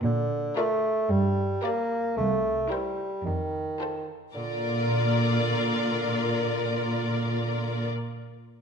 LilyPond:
<<
  \new Staff \with { instrumentName = "Violin section" } { \time 4/4 \key bes \major \tempo 4 = 111 r4 d''4 r4 d''4 | r4 c''4 r4 c''4 | d''1~ | d''1 | }
  \new Staff \with { instrumentName = "Violin section" } { \time 4/4 \key bes \major r4 bes'4 r4 bes'4 | r4 bes'4 r4 a'4 | bes'1~ | bes'1 | }
  \new Staff \with { instrumentName = "Viola section" } { \time 4/4 \key bes \major r4 f'4 r4 g'4 | r4 e'4 r4 f'4 | f'1~ | f'1 | }
  \new Staff \with { instrumentName = "Bassoon" } { \clef bass \time 4/4 \key bes \major d4 a4 g4 bes4 | a4 g4 ees4. r8 | d1~ | d1 | }
  \new Staff \with { instrumentName = "Cello section" } { \clef bass \time 4/4 \key bes \major bes,4 r4 g,4 r4 | c,4 r4 f,4 r4 | bes,1~ | bes,1 | }
>>